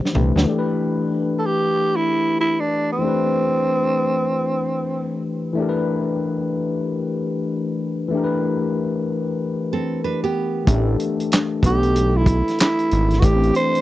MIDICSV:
0, 0, Header, 1, 6, 480
1, 0, Start_track
1, 0, Key_signature, 0, "minor"
1, 0, Tempo, 638298
1, 346, Time_signature, 4, 2, 24, 8
1, 10387, End_track
2, 0, Start_track
2, 0, Title_t, "Tenor saxophone"
2, 0, Program_c, 0, 66
2, 1044, Note_on_c, 0, 69, 64
2, 1096, Note_on_c, 0, 67, 97
2, 1107, Note_off_c, 0, 69, 0
2, 1476, Note_on_c, 0, 64, 86
2, 1487, Note_off_c, 0, 67, 0
2, 1798, Note_off_c, 0, 64, 0
2, 1807, Note_on_c, 0, 64, 96
2, 1956, Note_on_c, 0, 62, 85
2, 1967, Note_off_c, 0, 64, 0
2, 2185, Note_off_c, 0, 62, 0
2, 2197, Note_on_c, 0, 60, 80
2, 3928, Note_off_c, 0, 60, 0
2, 8767, Note_on_c, 0, 67, 78
2, 9152, Note_on_c, 0, 64, 79
2, 9163, Note_off_c, 0, 67, 0
2, 9475, Note_off_c, 0, 64, 0
2, 9484, Note_on_c, 0, 64, 89
2, 9925, Note_on_c, 0, 66, 76
2, 9936, Note_off_c, 0, 64, 0
2, 9961, Note_on_c, 0, 67, 83
2, 9972, Note_off_c, 0, 66, 0
2, 10194, Note_off_c, 0, 67, 0
2, 10199, Note_on_c, 0, 72, 102
2, 10387, Note_off_c, 0, 72, 0
2, 10387, End_track
3, 0, Start_track
3, 0, Title_t, "Nylon-string guitar"
3, 0, Program_c, 1, 24
3, 7315, Note_on_c, 1, 60, 64
3, 7315, Note_on_c, 1, 69, 71
3, 7538, Note_off_c, 1, 69, 0
3, 7539, Note_off_c, 1, 60, 0
3, 7552, Note_on_c, 1, 71, 73
3, 7553, Note_on_c, 1, 62, 64
3, 7688, Note_off_c, 1, 71, 0
3, 7689, Note_off_c, 1, 62, 0
3, 7698, Note_on_c, 1, 67, 73
3, 7704, Note_on_c, 1, 59, 61
3, 8385, Note_off_c, 1, 67, 0
3, 8388, Note_off_c, 1, 59, 0
3, 10387, End_track
4, 0, Start_track
4, 0, Title_t, "Tine electric piano"
4, 0, Program_c, 2, 4
4, 0, Control_c, 2, 64, 127
4, 0, Note_on_c, 2, 62, 61
4, 0, Note_on_c, 2, 67, 59
4, 0, Note_on_c, 2, 72, 79
4, 79, Note_off_c, 2, 62, 0
4, 87, Note_off_c, 2, 67, 0
4, 97, Note_off_c, 2, 72, 0
4, 98, Note_on_c, 2, 52, 51
4, 107, Note_on_c, 2, 57, 48
4, 117, Note_on_c, 2, 62, 42
4, 124, Note_on_c, 2, 67, 49
4, 133, Note_on_c, 2, 71, 53
4, 313, Note_off_c, 2, 52, 0
4, 322, Note_on_c, 2, 52, 65
4, 330, Note_off_c, 2, 57, 0
4, 339, Note_on_c, 2, 57, 62
4, 348, Note_off_c, 2, 62, 0
4, 355, Note_off_c, 2, 67, 0
4, 356, Control_c, 2, 64, 0
4, 357, Note_on_c, 2, 62, 60
4, 360, Note_off_c, 2, 71, 0
4, 372, Note_on_c, 2, 67, 63
4, 391, Note_on_c, 2, 69, 59
4, 429, Note_off_c, 2, 69, 0
4, 441, Note_on_c, 2, 71, 81
4, 480, Control_c, 2, 64, 127
4, 2224, Note_off_c, 2, 52, 0
4, 2233, Note_off_c, 2, 57, 0
4, 2241, Note_off_c, 2, 62, 0
4, 2244, Note_on_c, 2, 52, 61
4, 2249, Note_off_c, 2, 67, 0
4, 2262, Note_on_c, 2, 57, 54
4, 2277, Note_on_c, 2, 62, 54
4, 2284, Note_off_c, 2, 71, 0
4, 2294, Note_on_c, 2, 67, 56
4, 2311, Note_on_c, 2, 71, 63
4, 4145, Note_off_c, 2, 52, 0
4, 4154, Note_off_c, 2, 57, 0
4, 4157, Note_on_c, 2, 52, 71
4, 4161, Note_off_c, 2, 62, 0
4, 4170, Note_off_c, 2, 67, 0
4, 4176, Note_on_c, 2, 57, 66
4, 4179, Note_off_c, 2, 71, 0
4, 4191, Note_on_c, 2, 62, 70
4, 4209, Note_on_c, 2, 67, 62
4, 4226, Note_on_c, 2, 70, 64
4, 4266, Note_off_c, 2, 70, 0
4, 4278, Note_on_c, 2, 71, 81
4, 6062, Note_off_c, 2, 52, 0
4, 6071, Note_off_c, 2, 57, 0
4, 6078, Note_on_c, 2, 52, 74
4, 6079, Note_off_c, 2, 62, 0
4, 6087, Note_off_c, 2, 67, 0
4, 6097, Note_on_c, 2, 57, 66
4, 6111, Note_on_c, 2, 62, 61
4, 6122, Note_off_c, 2, 71, 0
4, 6128, Note_on_c, 2, 67, 65
4, 6146, Note_on_c, 2, 70, 61
4, 6186, Note_off_c, 2, 70, 0
4, 6196, Note_on_c, 2, 71, 76
4, 7982, Note_off_c, 2, 52, 0
4, 7991, Note_off_c, 2, 57, 0
4, 7999, Note_off_c, 2, 62, 0
4, 8006, Note_on_c, 2, 52, 68
4, 8007, Note_off_c, 2, 67, 0
4, 8021, Note_on_c, 2, 57, 66
4, 8040, Note_on_c, 2, 62, 66
4, 8041, Note_off_c, 2, 71, 0
4, 8057, Note_on_c, 2, 67, 63
4, 8075, Note_on_c, 2, 69, 79
4, 9906, Note_off_c, 2, 52, 0
4, 9914, Note_off_c, 2, 57, 0
4, 9920, Note_on_c, 2, 52, 62
4, 9923, Note_off_c, 2, 62, 0
4, 9931, Note_off_c, 2, 67, 0
4, 9939, Note_on_c, 2, 57, 55
4, 9940, Note_off_c, 2, 69, 0
4, 9954, Note_on_c, 2, 62, 55
4, 9971, Note_on_c, 2, 67, 52
4, 9989, Note_on_c, 2, 71, 53
4, 10028, Note_off_c, 2, 71, 0
4, 10039, Note_on_c, 2, 60, 68
4, 10387, Note_off_c, 2, 52, 0
4, 10387, Note_off_c, 2, 57, 0
4, 10387, Note_off_c, 2, 60, 0
4, 10387, Note_off_c, 2, 62, 0
4, 10387, Note_off_c, 2, 67, 0
4, 10387, End_track
5, 0, Start_track
5, 0, Title_t, "Analog synth bass"
5, 0, Program_c, 3, 38
5, 120, Note_on_c, 3, 36, 83
5, 247, Note_off_c, 3, 36, 0
5, 268, Note_on_c, 3, 38, 85
5, 346, Note_off_c, 3, 38, 0
5, 8033, Note_on_c, 3, 33, 106
5, 8247, Note_off_c, 3, 33, 0
5, 8750, Note_on_c, 3, 35, 88
5, 9345, Note_off_c, 3, 35, 0
5, 9719, Note_on_c, 3, 32, 103
5, 9930, Note_off_c, 3, 32, 0
5, 9951, Note_on_c, 3, 33, 93
5, 10166, Note_off_c, 3, 33, 0
5, 10387, End_track
6, 0, Start_track
6, 0, Title_t, "Drums"
6, 40, Note_on_c, 9, 38, 56
6, 112, Note_on_c, 9, 45, 79
6, 115, Note_off_c, 9, 38, 0
6, 187, Note_off_c, 9, 45, 0
6, 281, Note_on_c, 9, 38, 79
6, 356, Note_off_c, 9, 38, 0
6, 8026, Note_on_c, 9, 36, 106
6, 8032, Note_on_c, 9, 42, 78
6, 8101, Note_off_c, 9, 36, 0
6, 8107, Note_off_c, 9, 42, 0
6, 8269, Note_on_c, 9, 42, 65
6, 8345, Note_off_c, 9, 42, 0
6, 8421, Note_on_c, 9, 42, 53
6, 8496, Note_off_c, 9, 42, 0
6, 8510, Note_on_c, 9, 42, 87
6, 8525, Note_on_c, 9, 38, 121
6, 8525, Note_on_c, 9, 39, 89
6, 8585, Note_off_c, 9, 42, 0
6, 8600, Note_off_c, 9, 38, 0
6, 8601, Note_off_c, 9, 39, 0
6, 8744, Note_on_c, 9, 36, 79
6, 8753, Note_on_c, 9, 42, 65
6, 8819, Note_off_c, 9, 36, 0
6, 8828, Note_off_c, 9, 42, 0
6, 8896, Note_on_c, 9, 42, 42
6, 8971, Note_off_c, 9, 42, 0
6, 8991, Note_on_c, 9, 42, 84
6, 9066, Note_off_c, 9, 42, 0
6, 9221, Note_on_c, 9, 36, 93
6, 9227, Note_on_c, 9, 42, 57
6, 9296, Note_off_c, 9, 36, 0
6, 9303, Note_off_c, 9, 42, 0
6, 9383, Note_on_c, 9, 42, 50
6, 9394, Note_on_c, 9, 38, 30
6, 9458, Note_off_c, 9, 42, 0
6, 9463, Note_on_c, 9, 42, 63
6, 9469, Note_off_c, 9, 38, 0
6, 9483, Note_on_c, 9, 38, 109
6, 9484, Note_on_c, 9, 39, 94
6, 9539, Note_off_c, 9, 42, 0
6, 9559, Note_off_c, 9, 38, 0
6, 9559, Note_off_c, 9, 39, 0
6, 9615, Note_on_c, 9, 42, 33
6, 9690, Note_off_c, 9, 42, 0
6, 9710, Note_on_c, 9, 42, 70
6, 9785, Note_off_c, 9, 42, 0
6, 9855, Note_on_c, 9, 42, 42
6, 9872, Note_on_c, 9, 38, 33
6, 9930, Note_off_c, 9, 42, 0
6, 9945, Note_on_c, 9, 36, 111
6, 9947, Note_off_c, 9, 38, 0
6, 9950, Note_on_c, 9, 42, 77
6, 10020, Note_off_c, 9, 36, 0
6, 10025, Note_off_c, 9, 42, 0
6, 10102, Note_on_c, 9, 42, 36
6, 10177, Note_off_c, 9, 42, 0
6, 10188, Note_on_c, 9, 42, 64
6, 10263, Note_off_c, 9, 42, 0
6, 10340, Note_on_c, 9, 42, 55
6, 10387, Note_off_c, 9, 42, 0
6, 10387, End_track
0, 0, End_of_file